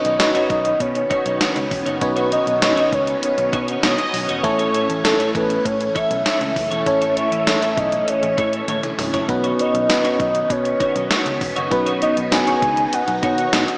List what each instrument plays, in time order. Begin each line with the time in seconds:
Already playing: fm electric piano B2 C#4 D#4 F#4 B4 C#5, string machine D#3 B3 C#4, soft synth lead D#5
0.05 picked electric bass B1, muted clean electric guitar stroke, closed hi-hat
0.19 fm electric piano C#4 D#4 F#4 B4 C#5, muted clean electric guitar stroke, snare, closed hi-hat, tambourine
0.35 clean electric guitar D#4 F#4 C#5, closed hi-hat
0.50 picked electric bass B1, soft synth lead D#5, muted clean electric guitar stroke, kick, closed hi-hat
0.65 muted clean electric guitar stroke, closed hi-hat
0.80 picked electric bass B2, soft synth lead C#5, muted clean electric guitar stroke, kick, closed hi-hat
0.95 muted clean electric guitar stroke, closed hi-hat
1.10 clean electric guitar D#4 F#4 C#5, kick, closed hi-hat
1.25 picked electric bass B1, clean electric guitar D#4 F#4 C#5, closed hi-hat
1.40 clean electric guitar D#4 F#4 C#5, snare, closed hi-hat, tambourine
1.56 picked electric bass C#2, muted clean electric guitar stroke, closed hi-hat
1.71 picked electric bass E1, muted clean electric guitar stroke, kick, open hi-hat
1.86 picked electric bass F#1, clean electric guitar D#4 F#4 C#5, closed hi-hat
2.01 picked electric bass B1, fm electric piano B2 C#4 D#4 F#4 B4 C#5, soft synth lead B4, muted clean electric guitar stroke, kick, closed hi-hat
2.16 clean electric guitar D#4 F#4 C#5, closed hi-hat
2.31 clean electric guitar D#4 F#4 C#5, soft synth lead D#5, closed hi-hat
2.47 picked electric bass B1, muted clean electric guitar stroke, closed hi-hat
2.61 fm electric piano C#4 D#4 F#4 B4 C#5, soft synth lead D#5, muted clean electric guitar stroke, snare, closed hi-hat, tambourine
2.77 clean electric guitar D#4 F#4 C#5, closed hi-hat
2.92 picked electric bass C#2, soft synth lead C#5, muted clean electric guitar stroke, kick, closed hi-hat
3.07 muted clean electric guitar stroke, closed hi-hat
3.22 soft synth lead C#5, muted clean electric guitar stroke, closed hi-hat
3.38 picked electric bass B1, muted clean electric guitar stroke, closed hi-hat
3.52 picked electric bass B2, clean electric guitar D#4 F#4 C#5, kick, closed hi-hat
3.68 clean electric guitar D#4 F#4 C#5, closed hi-hat
3.83 picked electric bass B2, clean electric guitar D#4 F#4 C#5, violin section D#5, snare, closed hi-hat, tambourine
3.98 muted clean electric guitar stroke, closed hi-hat
4.13 picked electric bass B1, muted clean electric guitar stroke, open hi-hat
4.28 picked electric bass E1, clean electric guitar D#4 F#4 C#5, closed hi-hat
4.43 picked electric bass A1, fm electric piano A2 A3 C#4 E4 A4 C#5, string machine E3 A3, violin section C#5, muted clean electric guitar stroke, kick, closed hi-hat
4.59 clean electric guitar E4 A4 C#5, closed hi-hat
4.74 clean electric guitar E4 A4 C#5, closed hi-hat
4.89 picked electric bass A1, muted clean electric guitar stroke, closed hi-hat
5.04 fm electric piano A3 C#4 E4 A4 C#5, soft synth lead A4, muted clean electric guitar stroke, snare, closed hi-hat, tambourine
5.19 clean electric guitar E4 A4 C#5, closed hi-hat
5.34 picked electric bass A1, soft synth lead B4, muted clean electric guitar stroke, kick, closed hi-hat
5.49 muted clean electric guitar stroke, closed hi-hat
5.65 picked electric bass A2, soft synth lead C#5, muted clean electric guitar stroke, kick, closed hi-hat
5.80 muted clean electric guitar stroke, closed hi-hat
5.95 clean electric guitar E4 A4 C#5, soft synth lead E5, kick, closed hi-hat
6.10 picked electric bass B1, muted clean electric guitar stroke, closed hi-hat
6.25 clean electric guitar E4 A4 C#5, soft synth lead E5, snare, closed hi-hat, tambourine
6.41 picked electric bass C#2, muted clean electric guitar stroke, closed hi-hat
6.56 picked electric bass F#1, muted clean electric guitar stroke, kick, open hi-hat
6.71 picked electric bass E1, clean electric guitar E4 A4 C#5, closed hi-hat
6.86 picked electric bass A1, fm electric piano A2 A3 C#4 E4 A4 C#5, soft synth lead C#5, muted clean electric guitar stroke, kick, closed hi-hat
7.01 clean electric guitar E4 A4 C#5, closed hi-hat
7.16 clean electric guitar E4 A4 C#5, soft synth lead E5, closed hi-hat
7.32 picked electric bass A1, muted clean electric guitar stroke, closed hi-hat
7.46 fm electric piano A3 C#4 E4 A4 C#5, snare, closed hi-hat, tambourine
7.62 clean electric guitar E4 A4 C#5, closed hi-hat
7.77 picked electric bass B1, soft synth lead D#5, muted clean electric guitar stroke, kick, closed hi-hat
7.92 muted clean electric guitar stroke, closed hi-hat
8.07 soft synth lead C#5, muted clean electric guitar stroke, closed hi-hat
8.23 picked electric bass A1, muted clean electric guitar stroke, closed hi-hat
8.38 picked electric bass A2, clean electric guitar E4 A4 C#5, kick, closed hi-hat
8.53 clean electric guitar E4 A4 C#5, closed hi-hat
8.68 picked electric bass A2, clean electric guitar E4 A4 C#5, closed hi-hat, high tom
8.83 muted clean electric guitar stroke, closed hi-hat, mid tom
8.98 picked electric bass C#2, muted clean electric guitar stroke, mid tom, open hi-hat
9.13 picked electric bass F#1, clean electric guitar E4 A4 C#5, closed hi-hat, floor tom
9.28 picked electric bass B1, fm electric piano B2 B3 C#4 D#4 F#4 B4, string machine D#3 B3, soft synth lead B4, muted clean electric guitar stroke, kick, closed hi-hat
9.44 clean electric guitar D#4 F#4 C#5, closed hi-hat
9.59 clean electric guitar D#4 F#4 C#5, soft synth lead D#5, closed hi-hat
9.74 picked electric bass B1, muted clean electric guitar stroke, closed hi-hat
9.89 fm electric piano B3 C#4 D#4 F#4 B4, muted clean electric guitar stroke, snare, closed hi-hat, tambourine
10.04 clean electric guitar D#4 F#4 C#5, closed hi-hat
10.20 picked electric bass B1, soft synth lead D#5, muted clean electric guitar stroke, kick, closed hi-hat
10.35 muted clean electric guitar stroke, closed hi-hat
10.50 picked electric bass B2, soft synth lead C#5, muted clean electric guitar stroke, kick, closed hi-hat
10.65 muted clean electric guitar stroke, closed hi-hat
10.80 clean electric guitar D#4 F#4 C#5, kick, closed hi-hat
10.95 picked electric bass B1, clean electric guitar D#4 F#4 C#5, closed hi-hat
11.10 clean electric guitar D#4 F#4 C#5, snare, closed hi-hat, tambourine
11.26 picked electric bass C#2, muted clean electric guitar stroke, closed hi-hat
11.41 picked electric bass E1, muted clean electric guitar stroke, kick, open hi-hat
11.56 picked electric bass F#1, clean electric guitar D#4 F#4 C#5, closed hi-hat
11.71 picked electric bass B1, fm electric piano B2 B3 C#4 D#4 F#4 B4, string machine D#4, soft synth lead B4, kick, closed hi-hat
11.86 clean electric guitar D#4 F#4 C#5, closed hi-hat
12.01 clean electric guitar D#4 F#4 C#5, soft synth lead D#5, closed hi-hat
12.17 picked electric bass B1, muted clean electric guitar stroke, closed hi-hat
12.31 fm electric piano B3 C#4 D#4 F#4 B4, soft synth lead G#5, muted clean electric guitar stroke, snare, closed hi-hat, tambourine
12.47 clean electric guitar D#4 F#4 C#5, closed hi-hat
12.62 picked electric bass C#2, muted clean electric guitar stroke, kick, closed hi-hat
12.77 muted clean electric guitar stroke, closed hi-hat
12.93 soft synth lead F#5, muted clean electric guitar stroke, closed hi-hat
13.08 picked electric bass B1, muted clean electric guitar stroke, closed hi-hat
13.23 picked electric bass B2, clean electric guitar D#4 F#4 C#5, soft synth lead F#5, kick, closed hi-hat
13.38 clean electric guitar D#4 F#4 C#5, closed hi-hat
13.53 picked electric bass B2, clean electric guitar D#4 F#4 C#5, snare, closed hi-hat, tambourine
13.68 muted clean electric guitar stroke, closed hi-hat